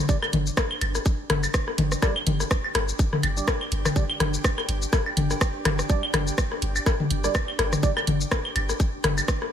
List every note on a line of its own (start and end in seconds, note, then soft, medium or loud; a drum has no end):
0.00 9.52 D4 medium
0.00 9.52 G4 medium
0.00 9.52 G5 medium
0.00 9.52 D6 medium
0.09 0.16 G3 medium
0.09 0.17 D4 medium
0.09 0.17 D5 medium
0.09 kick loud
0.09 shaker soft
0.23 cross-stick soft
0.23 claves medium
0.23 high woodblock medium
0.33 0.50 G1 loud
0.33 open hi-hat medium
0.33 mid tom medium
0.47 shaker medium
0.57 kick loud
0.57 cross-stick medium
0.57 shaker soft
0.71 claves medium
0.81 0.99 G1 medium
0.81 open hi-hat medium
0.81 high woodblock medium
0.95 cross-stick soft
0.95 shaker soft
1.06 kick loud
1.06 shaker soft
1.30 1.47 G1 medium
1.30 cross-stick medium
1.30 open hi-hat medium
1.30 mid tom medium
1.43 high woodblock medium
1.43 shaker medium
1.54 kick loud
1.54 cross-stick medium
1.54 shaker soft
1.68 cross-stick soft
1.78 1.95 G1 loud
1.78 open hi-hat medium
1.78 mid tom loud
1.92 cross-stick medium
1.92 shaker soft
2.02 2.15 G3 medium
2.02 2.15 D4 medium
2.02 2.15 D5 medium
2.02 kick loud
2.02 cross-stick medium
2.02 high woodblock medium
2.02 shaker soft
2.16 claves medium
2.27 2.44 G1 loud
2.27 open hi-hat medium
2.27 mid tom medium
2.40 cross-stick soft
2.40 shaker soft
2.51 kick loud
2.51 cross-stick medium
2.51 shaker soft
2.64 high woodblock medium
2.75 2.92 G1 medium
2.75 cross-stick medium
2.75 open hi-hat medium
2.89 shaker soft
2.99 kick loud
2.99 shaker soft
3.13 cross-stick soft
3.13 mid tom medium
3.23 3.40 G1 medium
3.23 open hi-hat medium
3.23 high woodblock medium
3.37 3.46 G3 medium
3.37 3.46 D4 medium
3.37 3.47 D5 loud
3.37 shaker soft
3.48 kick loud
3.48 cross-stick medium
3.48 shaker soft
3.61 claves medium
3.72 3.89 G1 loud
3.72 open hi-hat medium
3.85 cross-stick soft
3.85 cross-stick medium
3.85 mid tom medium
3.85 high woodblock medium
3.85 shaker soft
3.96 4.04 G3 medium
3.96 4.04 D4 medium
3.96 4.04 D5 medium
3.96 kick loud
3.96 shaker soft
4.10 claves medium
4.20 4.37 G1 loud
4.20 cross-stick medium
4.20 open hi-hat medium
4.20 mid tom medium
4.34 shaker soft
4.44 kick loud
4.44 cross-stick medium
4.44 high woodblock medium
4.44 shaker soft
4.58 cross-stick soft
4.58 claves medium
4.69 4.86 G1 medium
4.69 open hi-hat medium
4.82 shaker soft
4.93 kick loud
4.93 cross-stick medium
4.93 shaker soft
5.06 high woodblock medium
5.17 5.34 G1 medium
5.17 open hi-hat medium
5.17 mid tom medium
5.31 cross-stick soft
5.31 shaker soft
5.41 kick loud
5.41 cross-stick medium
5.41 shaker soft
5.65 5.82 G1 loud
5.65 cross-stick medium
5.65 open hi-hat medium
5.65 mid tom medium
5.65 high woodblock medium
5.79 cross-stick medium
5.79 shaker soft
5.90 6.02 G3 medium
5.90 6.02 D4 medium
5.90 6.02 D5 medium
5.90 kick loud
5.90 shaker soft
6.03 claves medium
6.14 6.31 G1 loud
6.14 cross-stick medium
6.14 open hi-hat medium
6.14 mid tom medium
6.14 high woodblock medium
6.27 shaker soft
6.38 kick loud
6.38 cross-stick medium
6.38 shaker soft
6.52 cross-stick soft
6.62 6.79 G1 medium
6.62 open hi-hat medium
6.76 high woodblock medium
6.76 shaker soft
6.86 kick loud
6.86 cross-stick medium
6.86 shaker soft
7.00 mid tom medium
7.11 7.28 G1 medium
7.11 open hi-hat medium
7.24 7.34 G3 medium
7.24 7.34 D4 medium
7.24 7.34 D5 loud
7.24 cross-stick soft
7.24 shaker soft
7.35 kick loud
7.35 cross-stick medium
7.35 high woodblock medium
7.35 shaker soft
7.48 claves medium
7.59 7.76 G1 loud
7.59 cross-stick medium
7.59 open hi-hat medium
7.72 cross-stick medium
7.72 mid tom medium
7.72 shaker soft
7.83 7.91 G3 medium
7.83 7.91 D4 medium
7.83 7.91 D5 medium
7.83 kick loud
7.83 shaker soft
7.97 cross-stick soft
7.97 claves medium
7.97 high woodblock medium
8.07 8.24 G1 loud
8.07 open hi-hat medium
8.07 mid tom medium
8.21 shaker medium
8.31 kick medium
8.31 cross-stick medium
8.31 shaker soft
8.45 claves medium
8.56 8.73 G1 medium
8.56 open hi-hat medium
8.56 high woodblock medium
8.69 cross-stick soft
8.69 shaker soft
8.80 kick loud
8.80 shaker soft
9.04 9.21 G1 medium
9.04 cross-stick medium
9.04 open hi-hat medium
9.04 mid tom medium
9.18 high woodblock medium
9.18 shaker soft
9.28 kick loud
9.28 cross-stick medium
9.28 shaker soft
9.42 cross-stick soft